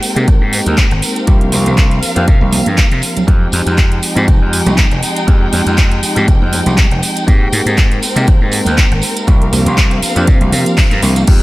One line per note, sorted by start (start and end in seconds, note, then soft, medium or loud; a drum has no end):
0.00 0.13 G#3 medium
0.00 0.13 A#3 medium
0.00 0.13 C4 medium
0.00 3.24 C4 medium
0.00 0.14 D#4 medium
0.00 0.14 G4 medium
0.00 3.24 A#4 medium
0.00 1.24 G5 medium
0.00 open hi-hat loud
0.00 tambourine medium
0.15 0.25 C3 medium
0.15 1.25 G#3 medium
0.15 1.25 A#3 medium
0.15 1.25 C4 medium
0.15 1.25 D#4 medium
0.15 1.25 G4 medium
0.15 closed hi-hat medium
0.15 tambourine soft
0.28 0.38 G#1 medium
0.28 kick loud
0.28 closed hi-hat medium
0.28 tambourine soft
0.41 0.60 G#2 medium
0.53 open hi-hat loud
0.53 tambourine loud
0.66 0.85 D#2 loud
0.66 closed hi-hat soft
0.66 tambourine medium
0.66 high conga medium
0.78 kick loud
0.78 clap loud
0.78 closed hi-hat medium
0.78 tambourine soft
0.91 1.00 G#1 medium
0.91 closed hi-hat soft
1.02 open hi-hat loud
1.02 tambourine loud
1.16 closed hi-hat soft
1.16 tambourine soft
1.27 1.47 C2 loud
1.27 2.13 F3 medium
1.27 2.13 A#3 medium
1.27 2.13 C4 medium
1.27 2.13 D4 medium
1.27 2.13 G4 medium
1.27 3.26 F5 medium
1.27 kick loud
1.27 closed hi-hat medium
1.27 tambourine soft
1.41 closed hi-hat soft
1.52 1.63 C2 medium
1.52 open hi-hat loud
1.52 tambourine medium
1.52 high conga medium
1.66 1.98 C2 medium
1.66 closed hi-hat soft
1.66 tambourine soft
1.78 kick loud
1.78 clap loud
1.78 closed hi-hat medium
1.91 closed hi-hat soft
2.02 open hi-hat loud
2.02 tambourine medium
2.15 2.25 F2 medium
2.15 3.25 F3 medium
2.15 3.25 A#3 medium
2.15 3.25 C4 medium
2.15 3.25 D4 medium
2.15 3.25 G4 medium
2.15 closed hi-hat medium
2.15 tambourine medium
2.28 2.38 C3 medium
2.28 kick loud
2.28 closed hi-hat medium
2.28 tambourine soft
2.41 2.60 C2 medium
2.41 high conga medium
2.52 open hi-hat loud
2.52 tambourine medium
2.52 high conga loud
2.66 2.85 G2 medium
2.66 closed hi-hat soft
2.66 tambourine soft
2.77 kick loud
2.77 clap loud
2.77 closed hi-hat medium
2.77 tambourine soft
2.92 3.00 C3 medium
2.92 closed hi-hat soft
3.02 open hi-hat loud
3.02 tambourine medium
3.16 closed hi-hat soft
3.16 tambourine soft
3.16 low conga medium
3.27 3.47 F2 medium
3.27 4.13 F3 medium
3.27 4.13 G#3 medium
3.27 7.24 G#3 medium
3.27 4.13 C4 medium
3.27 7.24 D#4 medium
3.27 4.13 D#4 medium
3.27 4.14 G4 medium
3.27 9.24 G5 medium
3.27 kick loud
3.27 closed hi-hat medium
3.27 tambourine soft
3.52 3.63 F2 medium
3.52 open hi-hat loud
3.52 tambourine medium
3.66 3.98 F2 medium
3.66 closed hi-hat soft
3.66 tambourine soft
3.77 kick loud
3.77 clap loud
3.77 closed hi-hat medium
3.77 tambourine soft
3.92 closed hi-hat soft
4.02 open hi-hat loud
4.02 tambourine medium
4.15 4.25 G#2 medium
4.15 5.25 F3 medium
4.15 5.25 G#3 medium
4.15 5.25 C4 medium
4.15 5.25 D#4 medium
4.15 5.25 G4 medium
4.15 closed hi-hat medium
4.15 tambourine soft
4.28 4.38 F1 medium
4.28 kick loud
4.28 closed hi-hat medium
4.28 tambourine soft
4.41 4.60 F2 medium
4.53 open hi-hat loud
4.53 tambourine medium
4.66 4.85 C2 loud
4.66 closed hi-hat medium
4.66 tambourine medium
4.66 high conga medium
4.78 kick loud
4.78 clap loud
4.78 closed hi-hat medium
4.78 tambourine soft
4.91 5.00 F1 medium
4.91 closed hi-hat soft
5.03 open hi-hat loud
5.03 tambourine medium
5.16 closed hi-hat soft
5.16 tambourine medium
5.27 5.47 F2 loud
5.27 6.13 F3 medium
5.27 6.13 G#3 medium
5.27 6.13 C4 medium
5.27 6.13 D#4 medium
5.27 6.14 G4 medium
5.27 kick loud
5.27 closed hi-hat medium
5.27 tambourine soft
5.53 5.63 F2 medium
5.53 open hi-hat loud
5.53 tambourine medium
5.53 high conga medium
5.66 5.98 F2 medium
5.66 closed hi-hat medium
5.66 tambourine soft
5.78 kick loud
5.78 clap loud
5.78 closed hi-hat medium
5.78 tambourine soft
5.91 closed hi-hat soft
6.03 muted slap bass stroke soft
6.03 open hi-hat loud
6.03 tambourine loud
6.15 6.25 G#2 medium
6.15 7.25 F3 medium
6.15 7.25 G#3 medium
6.15 7.25 C4 medium
6.15 7.25 D#4 medium
6.15 7.25 G4 medium
6.15 closed hi-hat medium
6.15 tambourine medium
6.28 6.38 F1 medium
6.28 kick loud
6.28 closed hi-hat medium
6.28 tambourine soft
6.42 6.60 F2 medium
6.42 high conga medium
6.53 open hi-hat loud
6.53 tambourine medium
6.53 high conga loud
6.66 6.85 C2 medium
6.66 closed hi-hat medium
6.66 tambourine medium
6.78 kick loud
6.78 clap loud
6.78 closed hi-hat medium
6.78 tambourine soft
6.91 7.00 F1 medium
6.91 closed hi-hat soft
7.02 open hi-hat loud
7.02 tambourine medium
7.16 closed hi-hat medium
7.16 tambourine soft
7.27 7.47 G#2 loud
7.27 8.13 G#3 medium
7.27 8.13 A#3 medium
7.27 9.26 C4 medium
7.27 8.13 C4 medium
7.27 8.13 D#4 medium
7.27 8.13 G4 medium
7.27 11.24 A#4 medium
7.27 kick loud
7.27 closed hi-hat medium
7.27 tambourine soft
7.52 7.63 G#2 medium
7.52 open hi-hat loud
7.52 tambourine medium
7.66 7.98 G#2 medium
7.66 closed hi-hat medium
7.66 tambourine soft
7.78 kick loud
7.78 clap loud
7.78 closed hi-hat medium
7.78 tambourine soft
7.92 closed hi-hat soft
8.02 open hi-hat loud
8.02 tambourine loud
8.16 8.25 C3 medium
8.16 9.25 G#3 medium
8.16 9.25 A#3 medium
8.16 9.25 C4 medium
8.16 9.25 D#4 medium
8.16 9.26 G4 medium
8.16 closed hi-hat medium
8.16 tambourine medium
8.27 8.38 G#1 medium
8.27 kick loud
8.27 closed hi-hat medium
8.27 tambourine soft
8.41 8.60 G#2 medium
8.52 open hi-hat loud
8.52 tambourine medium
8.65 8.85 D#2 loud
8.65 closed hi-hat medium
8.65 tambourine medium
8.65 high conga medium
8.78 kick loud
8.78 clap loud
8.78 closed hi-hat medium
8.78 tambourine soft
8.91 9.00 G#1 medium
8.91 closed hi-hat soft
9.02 open hi-hat loud
9.02 tambourine medium
9.16 closed hi-hat medium
9.16 tambourine medium
9.27 9.47 C2 loud
9.27 10.13 F3 medium
9.27 10.13 A#3 medium
9.27 10.13 C4 medium
9.27 11.26 C4 medium
9.27 10.13 D4 medium
9.27 10.14 G4 medium
9.27 11.26 F5 medium
9.27 kick loud
9.27 closed hi-hat medium
9.27 tambourine soft
9.42 closed hi-hat soft
9.52 9.63 C2 medium
9.52 open hi-hat loud
9.52 tambourine medium
9.52 high conga medium
9.66 9.98 C2 medium
9.66 closed hi-hat medium
9.66 tambourine soft
9.77 kick loud
9.77 clap loud
9.77 closed hi-hat medium
9.77 tambourine soft
9.91 closed hi-hat soft
10.02 muted slap bass stroke soft
10.02 open hi-hat loud
10.02 tambourine loud
10.16 10.25 F2 medium
10.16 11.25 F3 medium
10.16 11.25 A#3 medium
10.16 11.25 C4 medium
10.16 11.25 D4 medium
10.16 11.25 G4 medium
10.16 closed hi-hat medium
10.16 tambourine medium
10.27 10.38 C3 medium
10.27 kick loud
10.27 closed hi-hat medium
10.27 tambourine soft
10.41 10.52 C2 medium
10.41 closed hi-hat soft
10.41 high conga medium
10.52 10.63 C3 medium
10.52 open hi-hat loud
10.52 tambourine loud
10.52 high conga medium
10.66 closed hi-hat medium
10.66 tambourine medium
10.78 kick loud
10.78 clap loud
10.78 open hi-hat medium
10.91 11.00 G2 medium
10.91 closed hi-hat soft
11.02 11.22 C2 medium
11.02 open hi-hat loud
11.02 tambourine loud
11.02 high conga medium
11.16 closed hi-hat medium
11.16 tambourine medium
11.27 11.43 F2 loud
11.27 11.43 F3 medium
11.27 11.43 G#3 medium
11.27 11.43 C4 medium
11.27 11.43 D#4 medium
11.27 11.43 G4 medium
11.27 11.43 G5 medium
11.27 kick loud
11.27 closed hi-hat medium
11.27 crash loud